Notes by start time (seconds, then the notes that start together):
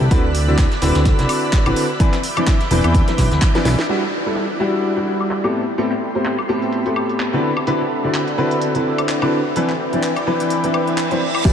Already playing: D5 E6 F#6 B6
0.01 C2
0.11 D2 D3 C4 E4 F#4 B4, kick, closed hi-hat
0.35 closed hi-hat, open hi-hat
0.48 D3 C4 E4 F#4 D5, closed hi-hat
0.58 kick, snare, clap, closed hi-hat
0.72 snare, closed hi-hat
0.81 D1 D3 C4 E4 F#4 B4, snare, closed hi-hat, open hi-hat
0.95 D2, snare, closed hi-hat
1.05 kick, snare, closed hi-hat
1.18 C2 D3 C4 E4 F#4 B4, snare, closed hi-hat
1.29 closed hi-hat, open hi-hat, high woodblock
1.53 kick, snare, clap, closed hi-hat
1.66 A1 D3 C4 E4 F#4 B4, closed hi-hat, high woodblock
1.76 closed hi-hat, open hi-hat
2.00 E3 C4 D4 E4 B4 E5 B5 D6 G6, kick, closed hi-hat
2.13 snare, clap, closed hi-hat
2.23 closed hi-hat, open hi-hat
2.37 E3 C4 D4 E4 D5, closed hi-hat, high woodblock
2.47 kick, snare, clap, closed hi-hat
2.61 snare, closed hi-hat
2.71 E1 E3 C4 D4 E4 B4, closed hi-hat, open hi-hat
2.84 E2, closed hi-hat, high woodblock
2.94 kick, closed hi-hat
3.07 E3 C4 D4 E4 B4, snare, closed hi-hat
3.18 B1, kick, snare, closed hi-hat, open hi-hat
3.31 D2, snare, closed hi-hat
3.42 kick, clap, closed hi-hat
3.55 E3 C4 D4 E4 B4, snare, closed hi-hat
3.65 B1, snare, closed hi-hat, open hi-hat
3.79 snare
3.89 G3 D4 E4 F#4 D5 F#6 G6, closed hi-hat
4.26 G3 D4 E4 A4
4.36 clap, closed hi-hat
4.49 closed hi-hat
4.60 G3 D4 E4 F#4
4.73 closed hi-hat
4.83 closed hi-hat
4.97 G3 D4 E4 F#4, closed hi-hat
5.20 closed hi-hat, high woodblock
5.31 clap, closed hi-hat
5.44 A2 B3 C4 G4 A4, high woodblock
5.54 A4 G5 B5 C6
5.78 A2 B3 C4 G4 A4, closed hi-hat
5.91 clap
6.15 A2 B3 C4 G4 C5
6.25 clap, closed hi-hat
6.39 closed hi-hat, high woodblock
6.49 A2 B3 C4 G4 A4
6.62 closed hi-hat
6.73 closed hi-hat
6.86 A2 B3 C4 G4 A4, closed hi-hat
6.96 high woodblock
7.09 closed hi-hat
7.20 clap, closed hi-hat
7.33 D3 C4 D4 E4 F#4 B4
7.43 C4 D4 E5 F#5
7.57 high woodblock
7.67 D3 C4 D4 E4 F#4 B4, closed hi-hat
8.04 D3 C4 D4 E4 F#4 D5
8.14 clap, closed hi-hat
8.28 closed hi-hat
8.38 D3 C4 D4 E4 F#4 B4
8.51 closed hi-hat
8.62 closed hi-hat
8.75 D3 C4 D4 E4 F#4 B4, closed hi-hat
8.98 closed hi-hat, high woodblock
9.09 clap, closed hi-hat
9.22 D3 C4 D4 E4 F#4 B4, high woodblock
9.56 E3 C4 D4 E4 B4 D5 G5, closed hi-hat
9.69 clap
9.93 E3 C4 D4 E4 D5, closed hi-hat
10.03 clap, closed hi-hat
10.16 closed hi-hat, high woodblock
10.27 E3 C4 D4 E4 B4
10.40 closed hi-hat
10.50 closed hi-hat, reverse cymbal
10.64 E3 C4 D4 E4 B4, closed hi-hat
10.74 high woodblock
10.87 closed hi-hat
10.98 clap, closed hi-hat
11.11 E3 C4 D4 E4 C5, closed hi-hat
11.35 high woodblock
11.45 E2 E3 E4 F#4 G4 D5 E5 D6 F#6 G6, kick, closed hi-hat, crash, impact